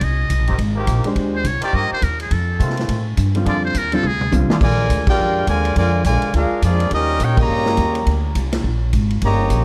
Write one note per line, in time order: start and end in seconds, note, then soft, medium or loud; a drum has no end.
0.01 0.29 C2 loud
0.01 0.60 D#5 loud
0.01 kick soft
0.01 ride medium
0.30 0.39 C2 medium
0.30 kick soft
0.30 hi-hat pedal medium
0.30 ride medium
0.39 0.48 A#1 medium
0.47 0.58 G1 medium
0.47 0.55 D#3 loud
0.47 0.55 A#3 medium
0.47 0.55 C4 medium
0.47 0.55 G4 loud
0.47 ride medium
0.58 0.87 G#1 medium
0.58 kick soft
0.58 ride medium
0.75 1.13 D#3 loud
0.75 1.13 A#3 medium
0.75 1.13 C4 medium
0.75 1.13 G4 loud
0.87 1.04 A#1 loud
0.87 kick soft
0.87 hi-hat pedal medium
0.87 ride medium
1.04 1.43 G#3 medium
1.04 1.43 D4 medium
1.04 1.44 G4 medium
1.04 1.44 C5 medium
1.04 muted upright bass stroke soft
1.04 ride medium
1.16 1.44 D#2 loud
1.16 kick soft
1.16 ride medium
1.36 1.48 C5 medium
1.44 1.61 C2 loud
1.44 1.63 C#5 loud
1.44 kick soft
1.44 hi-hat pedal medium
1.44 ride medium
1.61 2.00 D#3 loud
1.61 2.00 A#3 loud
1.61 2.00 C4 loud
1.61 2.00 G4 loud
1.61 1.77 D5 loud
1.61 muted upright bass stroke soft
1.61 ride medium
1.73 1.90 G2 medium
1.73 1.92 D#5 loud
1.73 kick soft
1.91 2.05 C5 loud
1.91 muted upright bass stroke soft
2.02 2.30 D#2 loud
2.02 2.21 A#4 medium
2.02 kick soft
2.02 hi-hat pedal medium
2.02 ride medium
2.20 2.34 G#4 medium
2.20 ride medium
2.31 2.59 F2 medium
2.31 2.78 A4 medium
2.31 kick soft
2.31 ride medium
2.59 2.88 C3 loud
2.59 3.02 D#3 medium
2.59 3.02 A3 medium
2.59 3.02 C4 medium
2.59 3.02 F4 loud
2.59 kick soft
2.59 hi-hat pedal medium
2.59 ride medium
2.70 snare soft
2.77 snare soft
2.77 ride medium
2.88 3.16 A2 loud
2.88 kick soft
2.88 ride medium
3.17 3.45 G2 loud
3.17 kick soft
3.17 hi-hat pedal medium
3.17 ride medium
3.35 3.73 D3 medium
3.35 3.73 G3 medium
3.35 3.73 C4 medium
3.35 3.74 F4 medium
3.35 ride medium
3.45 3.74 F2 medium
3.45 3.57 D3 loud
3.45 3.57 G#3 medium
3.45 3.57 A#3 medium
3.45 3.57 F4 loud
3.45 3.64 D5 medium
3.45 kick soft
3.45 ride medium
3.65 3.79 C5 loud
3.74 4.02 D#2 loud
3.74 3.96 A#4 loud
3.74 kick soft
3.74 hi-hat pedal medium
3.74 ride medium
3.92 4.02 D3 medium
3.92 4.03 G3 medium
3.92 4.03 C4 medium
3.92 4.04 F4 medium
3.92 4.08 A4 loud
3.92 ride medium
4.03 4.31 D2 medium
4.03 4.34 G#4 loud
4.03 mid tom medium
4.21 mid tom medium
4.32 4.48 C2 loud
4.32 4.48 D3 medium
4.32 4.48 G3 medium
4.32 4.48 C4 medium
4.32 4.49 F4 medium
4.32 hi-hat pedal medium
4.32 high tom medium
4.49 4.57 D3 loud
4.49 4.57 G#3 medium
4.49 4.57 A#3 medium
4.49 4.57 F4 loud
4.49 muted upright bass stroke soft
4.49 snare medium
4.61 4.89 A#1 medium
4.61 5.04 D3 medium
4.61 5.05 F3 medium
4.61 5.04 G#3 medium
4.61 5.05 F4 medium
4.61 5.05 A#4 loud
4.61 5.05 D5 loud
4.61 5.05 G#5 loud
4.61 kick medium
4.61 crash loud
4.90 5.18 D2 loud
4.90 kick soft
4.90 hi-hat pedal medium
4.90 ride medium
5.07 5.45 G#3 medium
5.07 5.45 D4 medium
5.07 5.46 F4 loud
5.07 5.45 G4 medium
5.07 5.46 A#4 medium
5.07 5.46 D5 medium
5.07 5.46 G5 loud
5.07 kick loud
5.07 crash medium
5.18 5.46 F2 medium
5.47 5.75 D#2 loud
5.47 5.75 D3 medium
5.47 5.75 F3 medium
5.47 5.75 G#3 medium
5.47 5.75 F4 medium
5.47 5.75 A#4 medium
5.47 5.75 D5 medium
5.47 5.75 G#5 loud
5.47 kick soft
5.47 hi-hat pedal medium
5.47 ride medium
5.65 ride medium
5.76 6.04 F2 loud
5.76 6.03 D3 medium
5.76 6.03 F3 medium
5.76 6.03 G#3 medium
5.76 6.04 F4 loud
5.76 6.04 A#4 loud
5.76 6.04 D5 loud
5.76 6.04 G#5 loud
5.76 kick soft
5.76 ride medium
6.04 6.21 A#1 loud
6.04 6.32 D3 medium
6.04 6.33 F3 medium
6.04 6.32 G#3 medium
6.04 6.32 F4 loud
6.04 6.32 A#4 loud
6.04 6.32 D5 medium
6.04 6.32 G#5 loud
6.04 kick soft
6.04 hi-hat pedal medium
6.04 ride medium
6.22 muted upright bass stroke soft
6.22 ride medium
6.33 6.50 D2 medium
6.33 6.61 G#3 medium
6.33 6.61 D4 loud
6.33 6.61 D4 medium
6.33 6.61 F4 medium
6.33 6.62 G#4 medium
6.33 6.61 A#4 medium
6.33 6.62 F5 loud
6.33 kick soft
6.33 ride medium
6.51 muted upright bass stroke soft
6.62 6.90 F2 loud
6.62 6.90 F3 medium
6.62 6.90 G#3 medium
6.62 6.90 A#3 medium
6.62 6.90 D4 medium
6.62 6.90 F4 medium
6.62 6.91 G#4 medium
6.62 6.90 D5 loud
6.62 kick soft
6.62 hi-hat pedal medium
6.62 ride medium
6.80 ride medium
6.91 7.19 D#2 loud
6.91 7.21 G3 medium
6.91 7.20 A#3 medium
6.91 7.21 C#4 loud
6.91 7.21 D#4 medium
6.91 7.21 G4 medium
6.91 7.21 A#4 medium
6.91 7.21 D#5 loud
6.91 kick soft
6.91 ride medium
7.20 7.48 A#2 loud
7.20 7.36 A#3 loud
7.20 7.38 C#4 medium
7.20 7.39 D#4 loud
7.20 7.38 G4 medium
7.20 7.39 A#4 loud
7.20 7.39 C#5 loud
7.20 7.39 G5 loud
7.20 kick soft
7.20 hi-hat pedal medium
7.20 ride medium
7.37 8.02 C#3 medium
7.37 8.20 G3 loud
7.37 8.20 A#3 loud
7.37 8.22 G4 medium
7.37 8.04 C#5 loud
7.37 8.04 D#5 loud
7.37 8.21 A#5 loud
7.37 kick loud
7.37 crash loud
7.49 7.77 G2 medium
7.66 snare medium
7.77 8.06 D#2 loud
7.77 kick soft
7.77 hi-hat pedal medium
7.77 ride medium
7.95 ride medium
8.06 8.34 D2 loud
8.06 kick soft
8.06 ride medium
8.35 8.63 C2 loud
8.35 kick soft
8.35 hi-hat pedal medium
8.35 ride medium
8.53 snare medium
8.53 ride medium
8.64 8.92 A#1 medium
8.64 kick soft
8.93 9.21 G#1 loud
8.93 kick soft
8.93 hi-hat pedal medium
8.93 ride medium
9.10 ride medium
9.22 9.50 G1 loud
9.22 9.65 C#3 medium
9.22 9.65 G3 medium
9.22 9.65 A#3 medium
9.22 9.65 G4 loud
9.22 9.65 D#5 medium
9.22 9.65 A#5 loud
9.22 kick soft
9.22 ride medium
9.26 9.65 C#5 loud
9.50 9.65 A#1 medium
9.50 kick soft
9.50 hi-hat pedal medium
9.50 ride medium